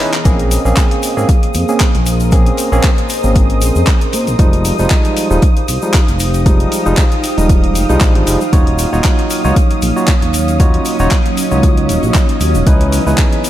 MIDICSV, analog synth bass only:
0, 0, Header, 1, 2, 480
1, 0, Start_track
1, 0, Key_signature, -5, "minor"
1, 0, Tempo, 517241
1, 236, Time_signature, 4, 2, 24, 8
1, 12527, End_track
2, 0, Start_track
2, 0, Title_t, "Analog synth bass"
2, 0, Program_c, 0, 38
2, 235, Note_on_c, 0, 34, 97
2, 541, Note_off_c, 0, 34, 0
2, 606, Note_on_c, 0, 34, 98
2, 681, Note_off_c, 0, 34, 0
2, 1086, Note_on_c, 0, 32, 85
2, 1161, Note_off_c, 0, 32, 0
2, 1435, Note_on_c, 0, 41, 87
2, 1526, Note_off_c, 0, 41, 0
2, 1807, Note_on_c, 0, 34, 87
2, 2341, Note_off_c, 0, 34, 0
2, 2527, Note_on_c, 0, 34, 99
2, 2601, Note_off_c, 0, 34, 0
2, 3007, Note_on_c, 0, 32, 81
2, 3355, Note_on_c, 0, 34, 94
2, 3369, Note_off_c, 0, 32, 0
2, 3446, Note_off_c, 0, 34, 0
2, 3487, Note_on_c, 0, 41, 101
2, 3561, Note_off_c, 0, 41, 0
2, 3836, Note_on_c, 0, 46, 83
2, 3966, Note_on_c, 0, 34, 85
2, 3980, Note_off_c, 0, 46, 0
2, 4041, Note_off_c, 0, 34, 0
2, 4074, Note_on_c, 0, 29, 100
2, 4381, Note_off_c, 0, 29, 0
2, 4447, Note_on_c, 0, 29, 94
2, 4521, Note_off_c, 0, 29, 0
2, 4926, Note_on_c, 0, 27, 82
2, 5001, Note_off_c, 0, 27, 0
2, 5276, Note_on_c, 0, 36, 85
2, 5366, Note_off_c, 0, 36, 0
2, 5646, Note_on_c, 0, 29, 88
2, 6181, Note_off_c, 0, 29, 0
2, 6367, Note_on_c, 0, 29, 95
2, 6441, Note_off_c, 0, 29, 0
2, 6847, Note_on_c, 0, 27, 87
2, 7196, Note_on_c, 0, 29, 96
2, 7210, Note_off_c, 0, 27, 0
2, 7286, Note_off_c, 0, 29, 0
2, 7328, Note_on_c, 0, 36, 100
2, 7402, Note_off_c, 0, 36, 0
2, 7435, Note_on_c, 0, 34, 82
2, 7567, Note_on_c, 0, 32, 96
2, 7581, Note_off_c, 0, 34, 0
2, 7642, Note_off_c, 0, 32, 0
2, 7675, Note_on_c, 0, 29, 90
2, 7766, Note_off_c, 0, 29, 0
2, 7914, Note_on_c, 0, 27, 102
2, 8221, Note_off_c, 0, 27, 0
2, 8287, Note_on_c, 0, 27, 98
2, 8361, Note_off_c, 0, 27, 0
2, 8766, Note_on_c, 0, 37, 85
2, 8841, Note_off_c, 0, 37, 0
2, 9115, Note_on_c, 0, 34, 85
2, 9205, Note_off_c, 0, 34, 0
2, 9486, Note_on_c, 0, 27, 86
2, 10021, Note_off_c, 0, 27, 0
2, 10207, Note_on_c, 0, 27, 99
2, 10281, Note_off_c, 0, 27, 0
2, 10686, Note_on_c, 0, 37, 87
2, 11034, Note_on_c, 0, 27, 94
2, 11048, Note_off_c, 0, 37, 0
2, 11125, Note_off_c, 0, 27, 0
2, 11165, Note_on_c, 0, 34, 100
2, 11241, Note_off_c, 0, 34, 0
2, 11514, Note_on_c, 0, 39, 83
2, 11645, Note_on_c, 0, 27, 85
2, 11659, Note_off_c, 0, 39, 0
2, 11721, Note_off_c, 0, 27, 0
2, 11754, Note_on_c, 0, 37, 95
2, 12061, Note_off_c, 0, 37, 0
2, 12126, Note_on_c, 0, 37, 99
2, 12201, Note_off_c, 0, 37, 0
2, 12527, End_track
0, 0, End_of_file